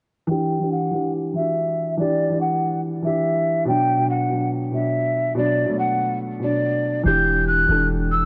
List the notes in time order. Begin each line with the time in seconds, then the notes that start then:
0.27 E3 D4 G5
0.31 G4
0.60 E3 D4
0.64 G4
0.72 F#5
0.91 E3 D4
0.95 G4
1.33 E3 D4 E5
1.37 F#4
1.97 E3 D4 D5
2.01 G4
2.29 E3 D4
2.33 G4
2.41 F#5
3.02 E3 D4 E5
3.06 G4
3.65 B2 F#3 G5
3.69 D4
3.97 B2 F#3
4.01 D4
4.10 F#5
4.29 B2 F#3
4.33 D4
4.71 B2 F#3 E5
4.75 D4
5.35 B2 F#3 D5
5.39 D4
5.66 B2 F#3
5.70 A3
5.79 F#5
6.40 B2 F#3 D5
6.44 D4
7.04 E1 E3 D4 G6
7.08 G4
7.48 F#6
7.67 E1 E3 D4
7.71 A4
8.11 E6